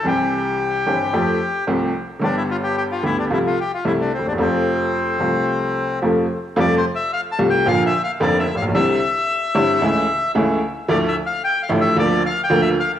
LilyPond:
<<
  \new Staff \with { instrumentName = "Bandoneon" } { \time 4/4 \key f \major \tempo 4 = 111 g'2. r4 | d'16 e'16 f'16 g'16 g'16 f'16 e'16 d'16 e'16 f'16 g'16 f'16 e'16 d'16 c'16 d'16 | c'2. r4 | \tuplet 3/2 { d''8 c''8 e''8 f''8 a''8 g''8 f''8 e''8 f''8 d''8 e''8 f''8 } |
e''2. r4 | \tuplet 3/2 { d''8 e''8 f''8 g''8 f''8 e''8 d''8. f''8 g''16~ g''16 e''8 f''8. } | }
  \new Staff \with { instrumentName = "Upright piano" } { \clef bass \time 4/4 \key f \major <c, c e g c' g'>4. <g,, g, e g c' g'>8 <f, f a c' g'>8 r8 <c, c f a c' g'>8 r8 | <g,, g, d g b g'>4. <d, d g b g'>8 <c, c f a f'>8 r8 <c, c g a e'>8 r32 d,32 ees,32 e,32 | <f, c f a f'>4. <c, c f a f'>4. <f, c f a f'>8 r8 | <f, c f g a f'>8 r4 <c, c g a f'>8 <bes,, bes, d f bes f'>8 r8 <f,, f, d f bes f'>8 r32 a,,32 bes,,32 b,,32 |
<c, c d g c' e'>8 r4 <g,, g, d g c' e'>8 <cis, cis e a e'>8 r8 <cis, cis e a e'>8 r8 | <d, d f a e'>8 r4 <a,, a, d f a e'>8 <d, d f bes f'>8 r8 <d, d f bes f'>8 r8 | }
>>